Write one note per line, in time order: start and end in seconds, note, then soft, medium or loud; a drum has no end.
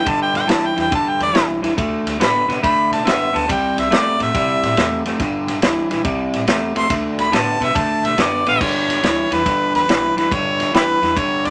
0.00 0.11 G5 loud
0.05 0.28 G1 medium
0.05 0.45 G2 medium
0.05 0.46 D3 medium
0.05 kick loud
0.05 ride medium
0.09 0.22 A5 loud
0.22 0.35 G5 medium
0.34 0.45 G1 loud
0.34 0.51 G5 loud
0.34 snare soft
0.34 ride medium
0.47 0.70 D2 medium
0.47 0.74 G2 medium
0.47 0.74 E3 loud
0.47 0.68 A5 loud
0.47 snare loud
0.47 ride medium
0.67 0.79 G5 loud
0.76 0.88 E2 medium
0.76 0.89 G2 medium
0.76 0.90 E3 medium
0.76 snare soft
0.76 ride medium
0.81 0.93 G5 loud
0.90 1.31 G2 medium
0.90 1.31 D3 medium
0.90 kick loud
0.90 ride medium
0.95 1.11 A5 medium
1.09 1.22 G5 medium
1.19 1.31 E2 loud
1.19 1.45 D5 loud
1.19 snare soft
1.19 ride medium
1.33 1.56 B1 medium
1.33 1.60 G2 medium
1.33 1.60 E3 medium
1.33 snare loud
1.33 ride medium
1.62 1.74 E2 medium
1.62 1.76 G2 medium
1.62 1.76 E3 loud
1.62 snare soft
1.62 ride medium
1.77 1.99 D2 loud
1.77 2.17 D3 medium
1.77 2.17 A3 loud
1.77 kick loud
1.77 ride medium
2.05 2.16 D2 medium
2.05 snare soft
2.05 ride medium
2.20 2.42 A2 medium
2.20 2.46 D3 medium
2.20 2.46 B3 loud
2.20 2.49 B5 loud
2.20 snare loud
2.20 ride medium
2.48 2.59 B2 medium
2.48 2.61 D3 medium
2.48 2.62 B3 medium
2.48 snare soft
2.48 ride medium
2.63 3.03 D3 medium
2.63 3.03 A3 medium
2.63 2.91 B5 loud
2.63 kick loud
2.63 ride medium
2.91 3.02 B2 medium
2.91 3.09 A5 loud
2.91 snare soft
2.91 ride medium
3.05 3.27 F#2 loud
3.05 3.31 D3 medium
3.05 3.31 B3 medium
3.05 3.38 E5 loud
3.05 snare loud
3.05 ride medium
3.33 3.45 D2 medium
3.33 3.46 D3 medium
3.33 3.47 B3 medium
3.33 3.49 A5 loud
3.33 snare soft
3.33 ride medium
3.48 3.71 C2 loud
3.48 3.88 C3 medium
3.48 3.89 G3 loud
3.48 3.77 G5 medium
3.48 kick loud
3.48 ride medium
3.77 3.88 C2 loud
3.77 3.96 E5 loud
3.77 snare soft
3.77 ride medium
3.91 4.13 G2 medium
3.91 4.16 C3 medium
3.91 4.17 A3 loud
3.91 4.20 D5 loud
3.91 snare loud
3.91 ride medium
4.19 4.31 A2 loud
4.19 4.32 C3 medium
4.19 4.32 A3 medium
4.19 5.04 E5 loud
4.19 snare soft
4.19 ride medium
4.34 4.74 C3 medium
4.34 4.56 C3 medium
4.34 4.74 G3 loud
4.34 kick loud
4.34 snare soft
4.34 ride medium
4.63 4.74 A2 medium
4.63 snare soft
4.63 ride medium
4.77 4.98 E2 medium
4.77 5.03 C3 medium
4.77 5.03 A3 medium
4.77 snare loud
4.77 ride medium
5.05 5.16 F1 medium
5.05 5.19 C3 medium
5.05 5.19 A3 medium
5.05 snare soft
5.05 ride medium
5.19 5.41 G1 loud
5.19 5.60 G2 medium
5.19 5.60 D3 medium
5.19 kick loud
5.19 snare soft
5.19 ride medium
5.47 5.58 G1 loud
5.47 snare soft
5.47 ride medium
5.62 5.84 D2 medium
5.62 5.88 G2 medium
5.62 5.88 E3 loud
5.62 snare loud
5.62 ride medium
5.90 6.01 B1 medium
5.90 6.03 G2 medium
5.90 6.04 E3 medium
5.90 snare soft
5.90 ride medium
6.04 6.26 C2 medium
6.04 6.44 C3 medium
6.04 6.45 G3 medium
6.04 kick loud
6.04 ride medium
6.33 6.44 A2 loud
6.33 snare soft
6.33 ride medium
6.47 6.69 E2 medium
6.47 6.73 C3 medium
6.47 6.73 A3 loud
6.47 snare loud
6.47 ride medium
6.75 6.86 C#2 medium
6.75 6.88 C3 medium
6.75 6.89 A3 medium
6.75 6.91 C6 loud
6.75 snare soft
6.75 ride medium
6.90 7.12 D2 loud
6.90 7.30 D3 medium
6.90 7.30 A3 medium
6.90 kick loud
6.90 snare soft
6.90 ride loud
7.18 7.29 D2 loud
7.18 7.36 B5 loud
7.18 snare soft
7.18 ride medium
7.32 7.54 A2 loud
7.32 7.58 D3 loud
7.32 7.58 B3 loud
7.32 7.65 A5 loud
7.32 snare medium
7.32 ride medium
7.60 7.72 B2 loud
7.60 7.73 D3 medium
7.60 7.74 B3 medium
7.60 7.79 E5 loud
7.60 snare soft
7.60 ride medium
7.74 8.15 D3 medium
7.74 7.97 D3 medium
7.74 8.15 A3 medium
7.74 8.07 A5 loud
7.74 kick loud
7.74 snare soft
7.74 ride medium
8.03 8.14 B2 medium
8.03 8.22 E5 loud
8.03 snare soft
8.03 ride medium
8.17 8.39 F#2 loud
8.17 8.43 D3 medium
8.17 8.43 B3 medium
8.17 8.46 D5 medium
8.17 snare loud
8.17 ride medium
8.45 8.57 A1 medium
8.45 8.59 D3 medium
8.45 8.59 B3 loud
8.45 8.61 F5 loud
8.45 snare soft
8.45 ride medium
8.61 8.82 G1 medium
8.61 9.01 G2 medium
8.61 9.01 D3 loud
8.61 9.34 C#5 medium
8.61 kick loud
8.61 crash loud
8.89 9.00 G1 medium
8.89 snare soft
8.89 ride medium
9.03 9.24 D2 medium
9.03 9.28 G2 medium
9.03 9.29 E3 medium
9.03 snare medium
9.03 ride medium
9.31 9.42 E2 medium
9.31 9.44 G2 medium
9.31 9.44 E3 medium
9.31 9.75 B4 loud
9.31 snare soft
9.31 ride medium
9.46 9.85 G2 medium
9.46 9.67 G2 medium
9.46 9.85 D3 medium
9.46 kick loud
9.46 snare soft
9.46 ride medium
9.74 9.85 E2 medium
9.74 10.14 B4 medium
9.74 snare soft
9.74 ride medium
9.88 10.10 B1 medium
9.88 10.14 G2 medium
9.88 10.14 E3 medium
9.88 snare loud
9.88 ride medium
10.16 10.27 F1 medium
10.16 10.29 G2 medium
10.16 10.30 E3 medium
10.16 10.34 B4 medium
10.16 snare soft
10.16 ride medium
10.31 10.53 G1 loud
10.31 10.70 G2 medium
10.31 10.71 D3 loud
10.31 10.74 C#5 loud
10.31 kick loud
10.31 ride medium
10.59 10.70 G1 loud
10.59 snare soft
10.59 ride medium
10.73 10.95 D2 medium
10.73 10.99 G2 medium
10.73 10.99 E3 medium
10.73 10.82 E4 medium
10.73 10.84 G4 medium
10.73 11.19 B4 loud
10.73 snare loud
10.73 ride medium
11.02 11.13 E2 medium
11.02 11.15 G2 medium
11.02 11.15 E3 medium
11.02 snare soft
11.02 ride soft
11.16 11.50 G2 medium
11.16 11.38 G2 medium
11.16 11.50 D3 medium
11.16 11.47 C#5 loud
11.16 kick loud
11.16 ride medium
11.45 11.50 E2 medium
11.45 11.50 D5 medium
11.45 snare soft
11.45 ride medium